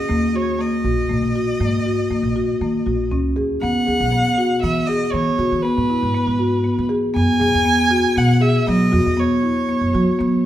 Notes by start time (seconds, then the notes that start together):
Already playing: D#5
0.09 D#2 A#3
0.34 F#4 C#5
0.59 A#3 D#5
0.84 A#1 F#4
1.09 A#1 A#3
1.22 A#1
1.36 F#4
1.60 G#2 A#3
1.86 F#4
2.10 D#3 A#3
2.23 A#1
2.36 F#4
2.61 D#3 A#3
2.86 A#1 F#4
3.11 C#2 C#4
3.36 D#2 G#4
3.62 E2 B3 F#5
3.87 D#2 G#4
4.00 B1
4.12 B3
4.38 F#4
4.62 E3 B3 E5
4.87 G#4 D#5
5.12 E3 B3 C#5
5.38 C#3 F#4
5.52 E3
5.63 B3 B4
5.77 G#2
5.90 E4
6.03 G#2
6.14 B3
6.27 G#2
6.39 F#4
6.64 B3
6.78 E3
6.89 G#4
7.14 F#2 B3 G#5
7.40 F#2 G#4
7.54 E2
7.65 B3
7.91 F#4
8.16 B2 B3 F#5
8.41 G#4 E5
8.67 F#3 B3 D#5
8.92 F#2 F#4
9.06 E2
9.17 B3 C#5
9.43 E4
9.69 B3
9.81 F#2
9.93 F#3 F#4
10.19 F#3 B3